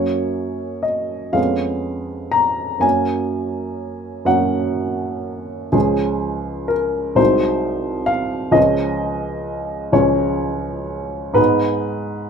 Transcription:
Already playing: F#2 F#3 A#3 C#4 C#5
0.83 D#5
1.33 F2 G#3 B3 C#4 F5
2.32 A#5
2.80 F#2 F#3 A#3 C#4 G#5
4.25 F#2 F#3 A#3 C#4 F#5
5.72 C#2 F3 G#3 C#4 G#4
6.68 A#4
7.15 C2 F#3 G#3 D#4 C5
8.06 F5
8.51 C#2 F3 G#3 C#4 D#5
9.92 C#2 F3 G#3 C#4 C#5
11.33 G#2 G#3 B3 D#4 B4

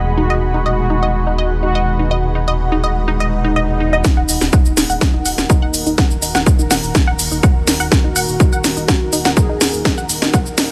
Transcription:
Already playing: D#1 B2 G#3 D#4 F#4 G#4 F#5 B5
0.17 D#4 F#4
0.30 D#5
0.54 D#4
0.66 D#5
0.90 D#4
1.03 D#5
1.27 D#4
1.38 D#5
1.63 D#4 F#4
1.75 D#5
1.99 D#4
2.11 D#5
2.35 D#4
2.48 D#5
2.72 D#4
2.84 D#5
3.08 D#4, swell
3.20 D#5
3.45 D#4
3.56 D#5
3.80 D#4
3.93 D#5
4.04 D#3 A#3 D#4 F#4, kick, snare, shaker
4.17 D#1 F#5
4.29 D#1, open hi-hat, shaker
4.41 D#1 D#4 A#4, snare, shaker
4.53 F#5, kick, shaker
4.65 D#1, shaker
4.77 D#1 D#4, snare, open hi-hat, shaker
4.90 D#1 F#5, shaker
5.01 A#5, kick, snare, shaker
5.14 D#1 D#4
5.25 D#1 F#5, open hi-hat, shaker
5.38 D#1, snare, shaker
5.50 D#4, kick, shaker
5.62 D#1 F#5
5.74 D#1, open hi-hat, shaker
5.86 D#1 D#4, shaker
5.98 F#5, kick, snare, shaker
6.11 D#1, shaker
6.22 D#1 D#4, open hi-hat, shaker
6.35 D#1 F#5, snare, shaker
6.46 kick, shaker
6.59 D#1 D#4, shaker
6.71 D#1 F#5, snare, open hi-hat, shaker
6.83 D#1, shaker
6.95 D#4, kick, snare, shaker
7.07 D#1 F#5
7.19 D#1, open hi-hat, shaker
7.32 D#1 D#4, shaker
7.43 F#5, kick, shaker
7.56 D#1
7.67 D#1 D#4, snare, open hi-hat, shaker
7.80 D#1 F#5, shaker
7.92 F#4, kick, snare, shaker
8.04 D#1 D#4
8.16 D#1 F#5, open hi-hat, shaker
8.28 D#1, shaker
8.40 D#4, kick, shaker
8.53 D#1 F#5, shaker
8.64 D#1, snare, open hi-hat, shaker
8.77 D#1 D#4, shaker
8.88 F#5, kick, snare, shaker
9.01 D#1
9.13 D#1 D#4, open hi-hat, shaker
9.25 D#1 F#5, snare, shaker
9.37 G#4, kick, shaker
9.49 D#1 D#4
9.61 D#1 F#5, snare, open hi-hat, shaker
9.74 D#1, shaker
9.85 D#4, kick, snare, shaker
9.98 D#1 F#5, shaker
10.09 D#1, open hi-hat, shaker
10.22 D#1 D#4, snare, shaker
10.34 F#5, kick, shaker
10.46 D#1, shaker
10.58 D#1 D#4, snare, open hi-hat, shaker

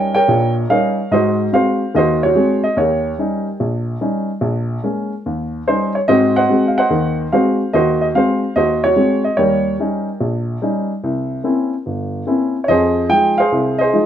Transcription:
Already playing: G3 C#4 D#4 G4 A#4 C#5 G5
0.14 A#4 C#5 G5
0.28 A#1 A#2
0.69 G3 C#4 D#4 A#4 C#5 F5
1.11 G#2 F#4 C5 D#5
1.52 G#3 C4 F#4 C5 F5
1.94 D#2 D#3 F#4 C5 D#5
2.23 F#4 C#5
2.35 G#3 C4 F#4
2.64 D#5
2.77 D#2 G4 A#4 C#5
3.18 G3 C#4 D#4
3.60 A#1
4.01 G3 C#4 D#4
4.41 A#1
4.83 G#3 A#3 C#4
5.26 D#2
5.67 G3 C#4 D#4 C5
5.95 C#5
6.08 G#2 C4 F#4 C5 D#5
6.36 C5 D#5 F#5
6.49 G#3 C4 F#4
6.68 F5
6.78 C5 D#5 F#5
6.90 D#2 D#3
7.32 G#3 C4 F#4 C5 F5
7.73 D#2 D#3 F#4 C5 D#5
8.01 D#5
8.15 G#3 C4 F#4 C5 F5
8.56 D#2 F#4 C5 D#5
8.84 F#4 C#5
8.96 G#3 C4 F#4
9.24 D#5
9.37 D#2 G3 G4 A#4 C#5
9.79 G3 C#4 D#4
10.21 A#1
10.62 G3 C#4 D#4
11.04 C2
11.44 A#3 C4 C#4 E4
11.86 G1
12.27 A#3 C4 C#4 E4
12.64 C#5
12.68 F2 G#4 C5 D#5
13.09 F3 G#3 D#4 G5
13.38 G#4 C5 F5
13.52 C2
13.78 G#4 C5 D#5
13.93 F3 G#3 D#4

